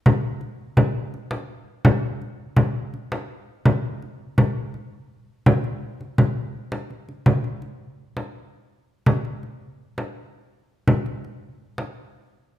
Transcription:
0.06 frame drum medium
0.41 frame drum soft
0.77 frame drum medium
1.14 frame drum soft
1.31 frame drum soft
1.85 frame drum medium
2.21 frame drum soft
2.57 frame drum soft
2.94 frame drum soft
3.12 frame drum soft
3.65 frame drum medium
4.02 frame drum soft
4.38 frame drum soft
4.74 frame drum soft
5.46 frame drum medium
5.64 frame drum soft
6.01 frame drum soft
6.18 frame drum soft
6.72 frame drum soft
6.90 frame drum soft
7.09 frame drum soft
7.26 frame drum medium
7.44 frame drum soft
7.62 frame drum soft
8.17 frame drum soft
9.06 frame drum soft
9.25 frame drum soft
9.43 frame drum soft
9.98 frame drum soft
10.88 frame drum soft
11.06 frame drum soft
11.24 frame drum soft
11.78 frame drum soft

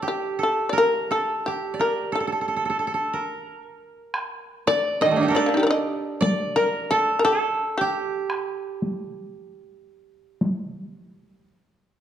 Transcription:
0.00 1.47 G4 medium
0.00 0.38 A4 medium
0.08 0.39 G4 medium
0.39 0.79 A4 soft
0.43 0.68 A4 medium
0.69 1.17 A#4 medium
0.69 0.76 D5 soft
0.78 1.09 A#4 medium
1.11 1.85 A4 medium
1.11 1.43 A4 medium
1.46 1.77 G4 medium
1.46 3.52 G4 soft
1.74 3.34 D5 soft
1.79 2.18 A#4 medium
1.79 2.11 A#4 medium
2.12 2.20 A4 soft
2.12 3.62 A4 medium
2.20 2.27 A4 soft
2.27 2.32 A4 soft
2.32 2.41 A4 soft
2.41 2.48 A4 soft
2.48 2.56 A4 soft
2.56 2.65 A4 soft
2.65 2.69 A4 soft
2.70 2.79 A4 soft
2.79 2.87 A4 soft
2.87 2.94 A4 soft
2.94 3.19 A4 soft
3.13 4.97 A#4 soft
4.14 taiko rim soft
4.67 5.07 D5 medium
4.67 4.99 D5 medium
5.01 5.23 D#3 soft
5.01 5.41 D#5 medium
5.01 5.34 D#5 medium
5.06 5.34 G3 soft
5.11 5.36 A3 soft
5.16 5.34 A#3 soft
5.16 7.59 D4 soft
5.21 5.41 D#4 soft
5.21 7.27 G4 soft
5.28 6.62 A4 medium
5.28 6.56 A#4 medium
5.35 6.20 D5 medium
5.35 5.59 D5 medium
5.46 5.54 A#3 soft
5.46 5.57 D4 soft
5.54 5.67 D#4 soft
5.54 5.71 G4 soft
5.60 5.63 A4 soft
5.60 5.66 A#4 medium
5.67 5.70 D5 medium
5.67 6.18 D#5 medium
6.21 7.81 D5 medium
6.21 6.54 D5 medium
6.21 taiko high soft
6.56 6.88 A#4 medium
6.56 6.97 A#4 medium
6.91 7.17 A4 medium
6.91 7.24 A4 medium
7.19 7.24 A#4 medium
7.24 9.15 A4 medium
7.24 7.74 A4 medium
7.78 9.56 G4 medium
7.78 11.49 G4 medium
8.30 taiko rim soft
8.82 taiko high soft
9.56 9.80 F#4 medium
9.80 10.03 F4 medium
10.03 10.26 E4 medium
10.26 11.47 D#4 medium
10.41 taiko high soft

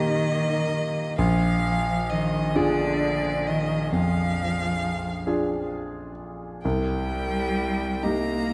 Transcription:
0.00 0.64 A#2 medium
0.00 1.19 D#3 medium
0.00 1.15 A#3 medium
0.00 1.15 D#4 medium
0.00 1.15 G4 medium
0.00 1.15 D#5 loud
1.18 2.51 A#1 medium
1.18 2.13 F3 medium
1.18 2.12 F5 loud
2.10 2.57 D#3 medium
2.10 2.57 D#5 loud
2.55 3.49 D3 loud
2.55 3.87 D4 medium
2.55 3.88 F4 medium
2.55 3.88 G#4 medium
2.55 3.49 D5 loud
3.47 3.94 D#3 medium
3.47 3.93 D#5 loud
3.91 6.09 F2 medium
3.91 5.72 F3 medium
3.91 5.71 F5 loud
5.27 6.60 D4 medium
5.27 6.61 F4 medium
5.27 6.61 G#4 medium
6.63 8.00 C2 medium
6.63 8.06 G3 loud
6.63 8.04 G5 loud
8.03 8.53 A#3 loud
8.03 8.53 D#4 soft
8.03 8.53 G4 medium
8.03 8.53 A#5 loud

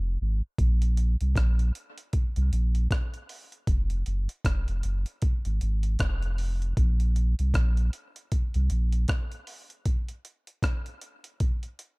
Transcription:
0.00 0.18 F1 medium
0.21 0.41 G#1 medium
0.58 1.16 A#1 loud
0.58 kick medium
0.58 closed hi-hat medium
0.82 closed hi-hat medium
0.97 closed hi-hat medium
1.21 1.35 C2 medium
1.21 closed hi-hat soft
1.36 1.71 A#1 loud
1.36 kick loud
1.36 cross-stick loud
1.36 closed hi-hat medium
1.59 closed hi-hat soft
1.75 closed hi-hat medium
1.98 closed hi-hat medium
2.13 kick medium
2.13 closed hi-hat medium
2.36 2.51 C2 medium
2.36 closed hi-hat soft
2.52 2.87 A#1 medium
2.52 closed hi-hat medium
2.75 closed hi-hat soft
2.91 kick medium
2.91 cross-stick medium
2.91 closed hi-hat medium
3.14 closed hi-hat soft
3.29 open hi-hat medium
3.52 closed hi-hat soft
3.67 4.03 F1 loud
3.67 kick loud
3.67 closed hi-hat loud
3.90 closed hi-hat medium
4.06 4.27 F#1 medium
4.06 closed hi-hat medium
4.29 closed hi-hat soft
4.45 4.66 F1 medium
4.45 kick loud
4.45 cross-stick loud
4.45 closed hi-hat loud
4.68 4.83 F1 medium
4.68 closed hi-hat soft
4.83 5.05 F#1 medium
4.83 closed hi-hat medium
5.06 closed hi-hat medium
5.22 kick loud
5.22 closed hi-hat medium
5.45 5.60 G#1 medium
5.45 closed hi-hat soft
5.61 5.97 G#1 medium
5.61 closed hi-hat medium
5.83 closed hi-hat medium
5.99 6.73 F1 medium
5.99 kick medium
5.99 cross-stick loud
5.99 closed hi-hat medium
6.22 closed hi-hat soft
6.38 open hi-hat medium
6.62 closed hi-hat soft
6.77 7.35 A#1 loud
6.77 kick loud
6.77 closed hi-hat medium
7.00 closed hi-hat medium
7.16 closed hi-hat medium
7.39 7.53 C2 medium
7.39 closed hi-hat medium
7.54 7.90 A#1 loud
7.54 kick loud
7.54 cross-stick loud
7.54 closed hi-hat loud
7.77 closed hi-hat soft
7.93 closed hi-hat medium
8.16 closed hi-hat medium
8.32 kick medium
8.32 closed hi-hat medium
8.54 8.69 C2 medium
8.54 closed hi-hat soft
8.70 9.06 A#1 medium
8.70 closed hi-hat medium
8.92 closed hi-hat medium
9.08 kick loud
9.08 cross-stick loud
9.08 closed hi-hat medium
9.32 closed hi-hat soft
9.47 open hi-hat medium
9.70 closed hi-hat soft
9.86 kick medium
9.86 closed hi-hat medium
10.09 closed hi-hat medium
10.25 closed hi-hat medium
10.47 closed hi-hat soft
10.63 kick loud
10.63 cross-stick loud
10.63 closed hi-hat loud
10.86 closed hi-hat soft
11.01 closed hi-hat medium
11.24 closed hi-hat medium
11.40 kick loud
11.40 closed hi-hat medium
11.63 closed hi-hat soft
11.79 closed hi-hat medium

